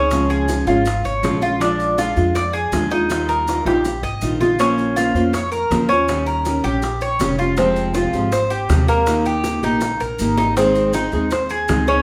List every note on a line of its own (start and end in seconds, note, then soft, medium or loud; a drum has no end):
0.00 0.61 C#2 medium
0.00 0.11 C4 soft
0.00 0.29 C#4 medium
0.00 0.11 D#4 soft
0.00 0.11 G#4 soft
0.11 0.48 C#3 medium
0.11 0.47 F3 medium
0.11 0.47 G#3 medium
0.11 0.48 C#4 medium
0.11 0.49 F4 medium
0.11 high bongo medium
0.11 maracas medium
0.30 0.66 G#4 medium
0.30 high bongo soft
0.30 maracas soft
0.48 0.67 F3 medium
0.48 0.67 G#3 soft
0.48 0.67 C#4 medium
0.48 0.66 F4 medium
0.48 high bongo medium
0.48 maracas medium
0.67 1.02 G#1 medium
0.67 0.84 F3 medium
0.67 0.85 G#3 medium
0.67 0.85 C#4 medium
0.67 0.85 F4 medium
0.67 1.04 F4 medium
0.67 maracas soft
0.85 muted nylon-string guitar stroke medium
0.85 high bongo medium
0.85 maracas medium
1.05 1.22 G#1 medium
1.05 1.41 C#5 medium
1.05 high bongo soft
1.05 maracas soft
1.23 2.11 A#1 medium
1.23 1.41 C#3 medium
1.23 1.41 F3 medium
1.23 1.41 G#3 medium
1.23 1.41 C#4 medium
1.23 1.40 F4 medium
1.23 high bongo medium
1.23 low bongo medium
1.23 maracas medium
1.41 1.59 G#3 soft
1.41 1.60 C#4 soft
1.41 1.60 F4 soft
1.41 1.60 F4 medium
1.41 maracas soft
1.60 1.96 F3 medium
1.60 1.96 G#3 medium
1.60 1.97 D4 medium
1.60 1.98 F4 medium
1.60 high bongo medium
1.60 maracas medium
1.80 high bongo soft
1.80 maracas soft
1.97 2.16 F3 soft
1.97 2.16 G#3 medium
1.97 2.16 D4 medium
1.97 2.34 F4 medium
1.97 2.15 F4 medium
1.97 high bongo medium
1.97 maracas medium
2.16 2.69 F2 medium
2.16 2.34 G#3 soft
2.16 2.34 D4 medium
2.16 2.35 F4 medium
2.16 maracas soft
2.35 2.53 D5 medium
2.35 muted nylon-string guitar stroke medium
2.35 high bongo medium
2.35 maracas medium
2.53 2.90 G#4 medium
2.53 high bongo soft
2.53 maracas soft
2.72 3.60 D#2 medium
2.72 2.91 F3 medium
2.72 2.91 G#3 medium
2.72 2.91 D4 medium
2.72 2.90 F4 medium
2.72 high bongo medium
2.72 low bongo medium
2.72 maracas medium
2.91 3.10 G#3 soft
2.91 3.10 D4 soft
2.91 3.28 D#4 medium
2.91 3.09 F4 soft
2.91 high bongo soft
2.91 maracas soft
3.10 3.47 D#3 medium
3.10 3.47 G3 medium
3.10 3.47 D#4 medium
3.10 3.47 F4 medium
3.10 high bongo medium
3.10 maracas medium
3.29 3.65 A#4 medium
3.29 high bongo soft
3.29 maracas soft
3.48 3.66 D#3 medium
3.48 3.66 G3 medium
3.48 3.66 D#4 medium
3.48 3.65 F4 medium
3.48 high bongo medium
3.48 maracas medium
3.65 4.00 A#1 medium
3.65 3.85 G3 soft
3.65 3.84 D#4 medium
3.65 3.84 F4 medium
3.65 4.02 G4 medium
3.65 high bongo medium
3.65 maracas soft
3.85 muted nylon-string guitar stroke medium
3.85 high bongo medium
3.85 maracas medium
4.03 4.20 G#1 medium
4.03 4.39 D#5 medium
4.03 maracas soft
4.21 5.09 A#1 medium
4.21 4.40 D#3 medium
4.21 4.40 G3 medium
4.21 4.40 D#4 medium
4.21 4.39 F4 medium
4.21 maracas medium
4.41 4.59 G3 soft
4.41 4.59 D#4 soft
4.41 4.58 F4 soft
4.41 4.59 F4 medium
4.41 low bongo medium
4.41 maracas soft
4.59 4.96 F3 medium
4.59 4.95 A#3 medium
4.59 4.96 C#4 medium
4.59 4.96 F4 medium
4.59 4.96 C5 medium
4.59 high bongo medium
4.59 maracas medium
4.78 high bongo soft
4.78 maracas soft
4.96 5.14 A#3 soft
4.96 5.15 C#4 medium
4.96 5.33 F4 medium
4.96 5.15 F4 medium
4.96 5.14 C5 medium
4.96 high bongo medium
4.96 maracas medium
5.14 5.67 F2 medium
5.14 5.33 A#3 medium
5.14 5.33 C#4 medium
5.14 5.33 F4 medium
5.14 5.33 C5 medium
5.14 maracas soft
5.33 5.51 C#5 medium
5.33 muted nylon-string guitar stroke medium
5.33 high bongo medium
5.33 maracas medium
5.52 5.88 A#4 medium
5.52 high bongo soft
5.52 maracas soft
5.70 6.58 D#2 medium
5.70 5.89 F3 medium
5.70 5.89 A#3 medium
5.70 5.89 C#4 medium
5.70 5.89 F4 medium
5.70 5.89 C5 medium
5.70 high bongo medium
5.70 low bongo medium
5.70 maracas medium
5.89 6.25 C#4 medium
5.89 6.08 C#4 soft
5.89 6.08 F4 soft
5.89 6.08 C5 soft
5.89 high bongo soft
5.89 maracas soft
6.08 6.45 D#3 medium
6.08 6.45 G3 medium
6.08 6.46 C#4 medium
6.08 6.46 G4 medium
6.08 high bongo medium
6.08 maracas medium
6.26 6.63 A#4 medium
6.26 high bongo soft
6.26 maracas soft
6.45 6.64 D#3 soft
6.45 6.64 G3 soft
6.45 6.64 C#4 medium
6.45 6.64 G4 medium
6.45 high bongo medium
6.45 maracas medium
6.64 7.16 A#1 medium
6.64 6.82 G3 soft
6.64 6.82 C#4 medium
6.64 7.00 G4 medium
6.64 6.82 G4 medium
6.64 maracas soft
6.82 muted nylon-string guitar stroke medium
6.82 high bongo medium
6.82 maracas medium
7.01 7.38 C#5 medium
7.01 high bongo soft
7.01 maracas soft
7.19 8.07 F1 medium
7.19 7.38 D#3 medium
7.19 7.39 G3 medium
7.19 7.38 C#4 medium
7.19 7.37 G4 medium
7.19 high bongo medium
7.19 low bongo medium
7.19 maracas medium
7.38 7.57 G3 soft
7.38 7.57 C#4 soft
7.38 7.57 F4 medium
7.38 7.56 G4 soft
7.38 maracas soft
7.57 7.94 C3 medium
7.57 7.94 F3 medium
7.57 7.95 G#3 medium
7.57 7.94 C4 medium
7.57 7.95 C4 medium
7.57 7.95 G4 medium
7.57 high bongo medium
7.57 maracas medium
7.76 high bongo soft
7.76 maracas soft
7.94 8.13 F3 medium
7.94 8.13 G#3 medium
7.94 8.14 C4 medium
7.94 8.31 F4 medium
7.94 8.13 G4 medium
7.94 high bongo medium
7.94 maracas medium
8.13 8.65 G#1 medium
8.13 8.32 F3 medium
8.13 8.32 G#3 medium
8.13 8.32 C4 medium
8.13 8.32 G4 medium
8.13 maracas soft
8.32 8.50 C5 medium
8.32 muted nylon-string guitar stroke medium
8.32 high bongo medium
8.32 maracas medium
8.50 8.87 G4 medium
8.50 high bongo soft
8.50 maracas soft
8.69 9.57 D#2 medium
8.69 8.88 C3 medium
8.69 8.88 F3 medium
8.69 8.88 G#3 medium
8.69 8.88 C4 medium
8.69 8.87 G4 medium
8.69 high bongo medium
8.69 low bongo medium
8.69 maracas medium
8.88 9.07 G#3 soft
8.88 9.25 A#3 medium
8.88 9.07 C4 soft
8.88 9.06 G4 soft
8.88 high bongo soft
8.88 maracas soft
9.07 9.43 D#3 medium
9.07 9.43 A#3 medium
9.07 9.44 D#4 medium
9.07 9.45 G4 medium
9.07 high bongo medium
9.07 maracas medium
9.25 9.62 G4 medium
9.25 high bongo soft
9.25 maracas soft
9.44 9.62 D#3 medium
9.44 9.63 A#3 medium
9.44 9.62 D#4 medium
9.44 9.62 G4 medium
9.44 high bongo medium
9.44 maracas medium
9.63 9.98 A#1 medium
9.63 9.82 A#3 soft
9.63 9.81 D#4 medium
9.63 10.00 D#4 medium
9.63 9.81 G4 medium
9.63 maracas soft
9.81 muted nylon-string guitar stroke medium
9.81 high bongo medium
9.81 maracas medium
10.00 10.18 A#1 medium
10.00 10.37 A#4 medium
10.00 maracas soft
10.19 11.07 G#1 medium
10.19 10.38 D#3 medium
10.19 10.38 A#3 medium
10.19 10.37 D#4 medium
10.19 10.37 G4 medium
10.19 maracas medium
10.38 10.57 A#3 soft
10.38 10.56 D#4 medium
10.38 10.56 D#4 soft
10.38 10.56 G4 soft
10.38 low bongo medium
10.38 maracas soft
10.57 10.94 D#3 medium
10.57 10.93 G#3 medium
10.57 10.93 C4 medium
10.57 10.94 C4 medium
10.57 10.94 D#4 medium
10.57 10.94 G#4 medium
10.57 high bongo medium
10.57 maracas medium
10.75 high bongo soft
10.75 maracas soft
10.93 11.12 G#3 soft
10.93 11.13 C4 medium
10.93 11.31 D#4 medium
10.93 11.12 D#4 medium
10.93 11.12 G#4 medium
10.93 high bongo medium
10.93 maracas medium
11.12 11.65 D#2 medium
11.12 11.31 G#3 soft
11.12 11.31 C4 medium
11.12 11.31 D#4 medium
11.12 11.31 G#4 medium
11.12 maracas soft
11.31 11.50 C5 medium
11.31 muted nylon-string guitar stroke medium
11.31 high bongo medium
11.31 maracas medium
11.49 11.87 G#4 medium
11.49 high bongo soft
11.49 maracas soft
11.68 12.02 C#2 medium
11.68 11.87 D#3 medium
11.68 11.87 G#3 medium
11.68 11.87 C4 medium
11.68 11.87 D#4 medium
11.68 11.86 G#4 medium
11.68 high bongo medium
11.68 low bongo medium
11.68 maracas medium
11.87 12.02 C4 soft
11.87 12.02 C#4 medium
11.87 12.02 D#4 soft
11.87 12.02 G#4 soft
11.87 high bongo soft
11.87 maracas soft